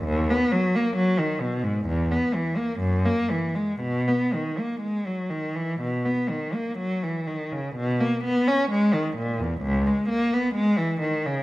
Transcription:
\new Staff \with { instrumentName = "Cello" } { \clef bass \time 4/4 \key b \major \tempo 4 = 64 dis,16 b16 fis16 ais16 fis16 dis16 b,16 gis,16 e,16 b16 e16 ais16 fis,16 ais16 e16 gis16 | b,16 b16 dis16 ais16 gis16 fis16 dis16 e16 b,16 b16 dis16 ais16 fis16 e16 dis16 cis16 | b,16 ais16 b16 cis'16 gis16 dis16 ais,16 e,16 cis,16 gis16 ais16 b16 gis16 e16 dis16 cis16 | }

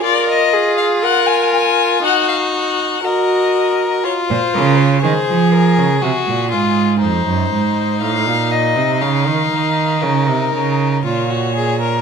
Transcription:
<<
  \new Staff \with { instrumentName = "Violin" } { \time 4/4 \key bes \phrygian \tempo 4 = 60 d''16 ees''8 f''16 ges''16 aes''16 aes''8 ges''16 f''16 ges''8 ees''4 | des''16 c''16 bes'16 des''16 c''8 bes'8 aes'4 c''4 | f''8 ees''8 f''4 bes'4 des''4 | }
  \new Staff \with { instrumentName = "Viola" } { \time 4/4 \key bes \phrygian bes'8 aes'8 bes'4 ees'4 ges'4 | r1 | r1 | }
  \new Staff \with { instrumentName = "Violin" } { \time 4/4 \key bes \phrygian f'2 ges'4 bes'4 | f'4 aes'4 ges'8 f'8 ees'4~ | ees'2. f'16 ges'16 aes'16 bes'16 | }
  \new Staff \with { instrumentName = "Cello" } { \clef bass \time 4/4 \key bes \phrygian r1 | r16 bes,16 des8 ees16 f8 des16 c16 bes,16 aes,8 f,16 ges,16 aes,8 | a,16 bes,8 c16 des16 ees16 ees8 des16 c16 des8 bes,4 | }
>>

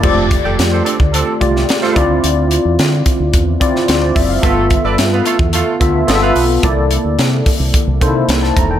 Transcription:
<<
  \new Staff \with { instrumentName = "Horn section" } { \time 4/4 \key f \major \tempo 4 = 109 <c' d' a'>8 r16 <g' a' d''>16 r16 <g' a' c''>16 <c' d' a'>16 r16 <c' d' a'>8 r8. <f' a' c''>8 r16 | r1 | <a f' a'>8 r16 <a' b' d''>16 r16 <b f' b'>16 <a f' a'>16 r16 <a f' a'>8 r8. <b f' b'>8 r16 | r1 | }
  \new Staff \with { instrumentName = "Tine electric piano" } { \time 4/4 \key f \major << { r1 | r2. c''16 d''16 e''16 f''16~ | f''16 r2. r8. | r2. r16 a''16 bes''16 g''16 | } \\ { <aes a f' g' d''>4. r4 <a f' g' d''>4 <c' e' f' d''>8~ | <c' e' f' d''>4 r4. <c' e' f' d''>4 r8 | <b f' a' e''>4. r4 <b f' a' e''>8 <b f' a' ees'' e''>4 | <bes e' a' d''>4. r4 <bes ees' e' a' c''>4 r8 | } >> }
  \new Staff \with { instrumentName = "Fingered electric bass" } { \clef bass \time 4/4 \key f \major f,,8. f,,16 f,8 r16 d,8 r16 c,8 r8 d,8 | d,8. e,16 d8 r16 d,16 e,8 r8 d,8 ges,,8 | g,,8. g,,16 g,8 r16 e,8 r16 d,8 g,,8 b,,8 | c,8. d,16 c8 r16 c,16 r16 c,16 c8 c,8 e,,8 | }
  \new DrumStaff \with { instrumentName = "Drums" } \drummode { \time 4/4 <cymc bd>8 <hh bd>8 <hh sn>8 hh16 bd16 hh8 <hh bd>16 sn16 <hh sn>16 sn16 <hh bd>8 | hh8 hh8 <hh sn>8 <hh bd>8 <hh bd>8 <hh bd>16 sn16 <hh sn>8 <hho bd>8 | <hh bd>8 <hh bd>8 <hh sn>8 hh16 bd16 hh8 <hh bd>8 <hh sn>8 hho8 | <hh bd>8 hh8 <hh sn>8 <hho bd>8 <hh bd>8 <hh bd>8 <hh sn>16 sn16 <hh bd>8 | }
>>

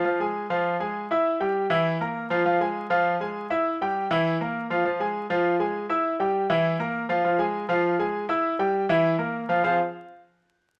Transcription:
\new Staff \with { instrumentName = "Grand piano" } { \time 4/4 \key f \minor \tempo 4 = 200 <f f' f''>8 <aes aes' aes''>4 <f f' f''>4 <aes aes' aes''>4 <e' e'' e'''>8~ | <e' e'' e'''>8 <g g' g''>4 <e e' e''>4 <bes bes' bes''>4 <f f' f''>8 | <f f' f''>8 <aes aes' aes''>4 <f f' f''>4 <aes aes' aes''>4 <e' e'' e'''>8~ | <e' e'' e'''>8 <g g' g''>4 <e e' e''>4 <bes bes' bes''>4 <f f' f''>8 |
<f f' f''>8 <aes aes' aes''>4 <f f' f''>4 <aes aes' aes''>4 <e' e'' e'''>8~ | <e' e'' e'''>8 <g g' g''>4 <e e' e''>4 <bes bes' bes''>4 <f f' f''>8 | <f f' f''>8 <aes aes' aes''>4 <f f' f''>4 <aes aes' aes''>4 <e' e'' e'''>8~ | <e' e'' e'''>8 <g g' g''>4 <e e' e''>4 <bes bes' bes''>4 <f f' f''>8 |
<f c' f' aes' c'' f''>8 r2. r8 | }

